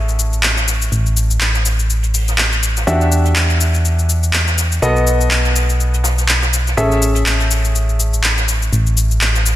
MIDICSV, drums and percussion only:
0, 0, Header, 1, 2, 480
1, 0, Start_track
1, 0, Tempo, 487805
1, 905, Time_signature, 4, 2, 24, 8
1, 9405, End_track
2, 0, Start_track
2, 0, Title_t, "Drums"
2, 85, Note_on_c, 9, 82, 22
2, 182, Note_off_c, 9, 82, 0
2, 182, Note_on_c, 9, 82, 59
2, 190, Note_off_c, 9, 82, 0
2, 190, Note_on_c, 9, 82, 75
2, 288, Note_off_c, 9, 82, 0
2, 324, Note_on_c, 9, 82, 33
2, 423, Note_off_c, 9, 82, 0
2, 425, Note_on_c, 9, 39, 119
2, 430, Note_on_c, 9, 82, 45
2, 523, Note_off_c, 9, 39, 0
2, 528, Note_off_c, 9, 82, 0
2, 551, Note_on_c, 9, 38, 47
2, 564, Note_on_c, 9, 82, 21
2, 649, Note_off_c, 9, 38, 0
2, 662, Note_on_c, 9, 38, 43
2, 663, Note_off_c, 9, 82, 0
2, 669, Note_on_c, 9, 82, 70
2, 761, Note_off_c, 9, 38, 0
2, 768, Note_off_c, 9, 82, 0
2, 804, Note_on_c, 9, 82, 33
2, 899, Note_off_c, 9, 82, 0
2, 899, Note_on_c, 9, 82, 85
2, 910, Note_off_c, 9, 82, 0
2, 910, Note_on_c, 9, 82, 40
2, 1008, Note_off_c, 9, 82, 0
2, 1044, Note_on_c, 9, 82, 18
2, 1143, Note_off_c, 9, 82, 0
2, 1149, Note_on_c, 9, 82, 74
2, 1248, Note_off_c, 9, 82, 0
2, 1284, Note_on_c, 9, 82, 32
2, 1382, Note_off_c, 9, 82, 0
2, 1384, Note_on_c, 9, 39, 113
2, 1389, Note_on_c, 9, 82, 43
2, 1483, Note_off_c, 9, 39, 0
2, 1488, Note_off_c, 9, 82, 0
2, 1514, Note_on_c, 9, 38, 43
2, 1524, Note_on_c, 9, 82, 20
2, 1613, Note_off_c, 9, 38, 0
2, 1622, Note_off_c, 9, 82, 0
2, 1623, Note_on_c, 9, 38, 44
2, 1629, Note_on_c, 9, 82, 69
2, 1722, Note_off_c, 9, 38, 0
2, 1727, Note_off_c, 9, 82, 0
2, 1764, Note_on_c, 9, 82, 30
2, 1863, Note_off_c, 9, 82, 0
2, 1863, Note_on_c, 9, 82, 88
2, 1869, Note_off_c, 9, 82, 0
2, 1869, Note_on_c, 9, 82, 39
2, 1968, Note_off_c, 9, 82, 0
2, 1995, Note_on_c, 9, 42, 39
2, 2004, Note_on_c, 9, 82, 20
2, 2094, Note_off_c, 9, 42, 0
2, 2102, Note_off_c, 9, 82, 0
2, 2105, Note_on_c, 9, 46, 70
2, 2109, Note_on_c, 9, 82, 66
2, 2203, Note_off_c, 9, 46, 0
2, 2207, Note_off_c, 9, 82, 0
2, 2244, Note_on_c, 9, 82, 31
2, 2247, Note_on_c, 9, 38, 40
2, 2340, Note_off_c, 9, 38, 0
2, 2340, Note_on_c, 9, 38, 103
2, 2342, Note_off_c, 9, 82, 0
2, 2344, Note_on_c, 9, 39, 125
2, 2349, Note_on_c, 9, 82, 42
2, 2439, Note_off_c, 9, 38, 0
2, 2442, Note_off_c, 9, 39, 0
2, 2447, Note_off_c, 9, 82, 0
2, 2484, Note_on_c, 9, 82, 20
2, 2582, Note_off_c, 9, 82, 0
2, 2589, Note_on_c, 9, 82, 72
2, 2688, Note_off_c, 9, 82, 0
2, 2724, Note_on_c, 9, 82, 32
2, 2728, Note_on_c, 9, 38, 43
2, 2820, Note_off_c, 9, 82, 0
2, 2820, Note_on_c, 9, 82, 94
2, 2827, Note_off_c, 9, 38, 0
2, 2829, Note_off_c, 9, 82, 0
2, 2829, Note_on_c, 9, 82, 39
2, 2928, Note_off_c, 9, 82, 0
2, 2960, Note_on_c, 9, 38, 39
2, 2963, Note_on_c, 9, 82, 19
2, 3059, Note_off_c, 9, 38, 0
2, 3062, Note_off_c, 9, 82, 0
2, 3069, Note_on_c, 9, 82, 67
2, 3167, Note_off_c, 9, 82, 0
2, 3203, Note_on_c, 9, 42, 43
2, 3204, Note_on_c, 9, 82, 31
2, 3302, Note_off_c, 9, 42, 0
2, 3302, Note_off_c, 9, 82, 0
2, 3304, Note_on_c, 9, 39, 115
2, 3309, Note_on_c, 9, 82, 42
2, 3402, Note_off_c, 9, 39, 0
2, 3407, Note_off_c, 9, 82, 0
2, 3437, Note_on_c, 9, 42, 40
2, 3444, Note_on_c, 9, 82, 20
2, 3536, Note_off_c, 9, 42, 0
2, 3543, Note_off_c, 9, 82, 0
2, 3549, Note_on_c, 9, 82, 69
2, 3648, Note_off_c, 9, 82, 0
2, 3684, Note_on_c, 9, 82, 29
2, 3782, Note_off_c, 9, 82, 0
2, 3789, Note_on_c, 9, 82, 40
2, 3888, Note_off_c, 9, 82, 0
2, 3924, Note_on_c, 9, 82, 21
2, 4022, Note_off_c, 9, 82, 0
2, 4029, Note_on_c, 9, 82, 67
2, 4127, Note_off_c, 9, 82, 0
2, 4164, Note_on_c, 9, 82, 30
2, 4262, Note_off_c, 9, 82, 0
2, 4264, Note_on_c, 9, 39, 116
2, 4269, Note_on_c, 9, 82, 42
2, 4363, Note_off_c, 9, 39, 0
2, 4368, Note_off_c, 9, 82, 0
2, 4397, Note_on_c, 9, 38, 47
2, 4404, Note_on_c, 9, 82, 20
2, 4495, Note_off_c, 9, 38, 0
2, 4502, Note_off_c, 9, 82, 0
2, 4502, Note_on_c, 9, 38, 46
2, 4509, Note_on_c, 9, 82, 69
2, 4600, Note_off_c, 9, 38, 0
2, 4608, Note_off_c, 9, 82, 0
2, 4644, Note_on_c, 9, 82, 32
2, 4742, Note_off_c, 9, 82, 0
2, 4742, Note_on_c, 9, 82, 82
2, 4749, Note_off_c, 9, 82, 0
2, 4749, Note_on_c, 9, 82, 41
2, 4848, Note_off_c, 9, 82, 0
2, 4884, Note_on_c, 9, 82, 20
2, 4981, Note_off_c, 9, 82, 0
2, 4981, Note_on_c, 9, 82, 53
2, 4989, Note_off_c, 9, 82, 0
2, 4989, Note_on_c, 9, 82, 74
2, 5087, Note_off_c, 9, 82, 0
2, 5124, Note_on_c, 9, 82, 31
2, 5222, Note_off_c, 9, 82, 0
2, 5224, Note_on_c, 9, 39, 110
2, 5229, Note_on_c, 9, 82, 42
2, 5323, Note_off_c, 9, 39, 0
2, 5327, Note_off_c, 9, 82, 0
2, 5364, Note_on_c, 9, 38, 45
2, 5364, Note_on_c, 9, 82, 20
2, 5462, Note_off_c, 9, 38, 0
2, 5462, Note_off_c, 9, 82, 0
2, 5469, Note_on_c, 9, 82, 76
2, 5473, Note_on_c, 9, 38, 41
2, 5568, Note_off_c, 9, 82, 0
2, 5572, Note_off_c, 9, 38, 0
2, 5604, Note_on_c, 9, 82, 29
2, 5702, Note_off_c, 9, 82, 0
2, 5705, Note_on_c, 9, 82, 87
2, 5709, Note_off_c, 9, 82, 0
2, 5709, Note_on_c, 9, 82, 42
2, 5808, Note_off_c, 9, 82, 0
2, 5844, Note_on_c, 9, 82, 21
2, 5847, Note_on_c, 9, 42, 40
2, 5941, Note_on_c, 9, 38, 107
2, 5942, Note_off_c, 9, 82, 0
2, 5942, Note_on_c, 9, 82, 69
2, 5945, Note_off_c, 9, 42, 0
2, 5950, Note_off_c, 9, 82, 0
2, 5950, Note_on_c, 9, 82, 70
2, 6039, Note_off_c, 9, 38, 0
2, 6048, Note_off_c, 9, 82, 0
2, 6081, Note_on_c, 9, 38, 42
2, 6084, Note_on_c, 9, 82, 33
2, 6180, Note_off_c, 9, 38, 0
2, 6183, Note_off_c, 9, 82, 0
2, 6184, Note_on_c, 9, 38, 41
2, 6185, Note_on_c, 9, 39, 110
2, 6190, Note_on_c, 9, 82, 42
2, 6283, Note_off_c, 9, 38, 0
2, 6283, Note_off_c, 9, 39, 0
2, 6288, Note_off_c, 9, 82, 0
2, 6320, Note_on_c, 9, 38, 86
2, 6320, Note_on_c, 9, 82, 68
2, 6325, Note_off_c, 9, 82, 0
2, 6325, Note_on_c, 9, 82, 20
2, 6419, Note_off_c, 9, 38, 0
2, 6423, Note_off_c, 9, 82, 0
2, 6424, Note_on_c, 9, 38, 39
2, 6430, Note_on_c, 9, 82, 72
2, 6522, Note_off_c, 9, 38, 0
2, 6528, Note_off_c, 9, 82, 0
2, 6560, Note_on_c, 9, 82, 56
2, 6565, Note_off_c, 9, 82, 0
2, 6565, Note_on_c, 9, 82, 32
2, 6568, Note_on_c, 9, 38, 35
2, 6660, Note_off_c, 9, 82, 0
2, 6660, Note_on_c, 9, 82, 81
2, 6666, Note_off_c, 9, 38, 0
2, 6670, Note_off_c, 9, 82, 0
2, 6670, Note_on_c, 9, 82, 43
2, 6768, Note_off_c, 9, 82, 0
2, 6799, Note_on_c, 9, 38, 38
2, 6805, Note_on_c, 9, 82, 20
2, 6897, Note_off_c, 9, 38, 0
2, 6897, Note_off_c, 9, 82, 0
2, 6897, Note_on_c, 9, 82, 55
2, 6910, Note_off_c, 9, 82, 0
2, 6910, Note_on_c, 9, 82, 74
2, 7008, Note_off_c, 9, 82, 0
2, 7034, Note_on_c, 9, 42, 40
2, 7045, Note_on_c, 9, 82, 32
2, 7132, Note_off_c, 9, 42, 0
2, 7143, Note_off_c, 9, 82, 0
2, 7145, Note_on_c, 9, 39, 111
2, 7150, Note_on_c, 9, 82, 44
2, 7244, Note_off_c, 9, 39, 0
2, 7248, Note_off_c, 9, 82, 0
2, 7283, Note_on_c, 9, 42, 42
2, 7285, Note_on_c, 9, 82, 21
2, 7381, Note_off_c, 9, 42, 0
2, 7383, Note_off_c, 9, 82, 0
2, 7390, Note_on_c, 9, 82, 78
2, 7488, Note_off_c, 9, 82, 0
2, 7525, Note_on_c, 9, 82, 33
2, 7623, Note_off_c, 9, 82, 0
2, 7625, Note_on_c, 9, 82, 80
2, 7630, Note_off_c, 9, 82, 0
2, 7630, Note_on_c, 9, 82, 42
2, 7729, Note_off_c, 9, 82, 0
2, 7765, Note_on_c, 9, 82, 21
2, 7863, Note_off_c, 9, 82, 0
2, 7870, Note_on_c, 9, 82, 75
2, 7871, Note_off_c, 9, 82, 0
2, 7871, Note_on_c, 9, 82, 57
2, 7970, Note_off_c, 9, 82, 0
2, 8004, Note_on_c, 9, 82, 32
2, 8103, Note_off_c, 9, 82, 0
2, 8105, Note_on_c, 9, 39, 110
2, 8110, Note_on_c, 9, 82, 42
2, 8203, Note_off_c, 9, 39, 0
2, 8208, Note_off_c, 9, 82, 0
2, 8244, Note_on_c, 9, 38, 48
2, 8244, Note_on_c, 9, 82, 23
2, 8339, Note_off_c, 9, 82, 0
2, 8339, Note_on_c, 9, 82, 70
2, 8343, Note_off_c, 9, 38, 0
2, 8348, Note_on_c, 9, 38, 40
2, 8349, Note_off_c, 9, 82, 0
2, 8349, Note_on_c, 9, 82, 72
2, 8447, Note_off_c, 9, 38, 0
2, 8448, Note_off_c, 9, 82, 0
2, 8484, Note_on_c, 9, 82, 34
2, 8581, Note_off_c, 9, 82, 0
2, 8581, Note_on_c, 9, 82, 88
2, 8590, Note_off_c, 9, 82, 0
2, 8590, Note_on_c, 9, 82, 45
2, 8688, Note_off_c, 9, 82, 0
2, 8724, Note_on_c, 9, 82, 21
2, 8819, Note_off_c, 9, 82, 0
2, 8819, Note_on_c, 9, 82, 62
2, 8829, Note_off_c, 9, 82, 0
2, 8829, Note_on_c, 9, 82, 80
2, 8928, Note_off_c, 9, 82, 0
2, 8965, Note_on_c, 9, 82, 35
2, 9063, Note_off_c, 9, 82, 0
2, 9065, Note_on_c, 9, 39, 106
2, 9070, Note_on_c, 9, 82, 46
2, 9163, Note_off_c, 9, 39, 0
2, 9168, Note_off_c, 9, 82, 0
2, 9193, Note_on_c, 9, 38, 47
2, 9204, Note_on_c, 9, 82, 22
2, 9292, Note_off_c, 9, 38, 0
2, 9303, Note_off_c, 9, 82, 0
2, 9306, Note_on_c, 9, 38, 42
2, 9309, Note_on_c, 9, 82, 80
2, 9313, Note_off_c, 9, 82, 0
2, 9313, Note_on_c, 9, 82, 67
2, 9405, Note_off_c, 9, 38, 0
2, 9405, Note_off_c, 9, 82, 0
2, 9405, End_track
0, 0, End_of_file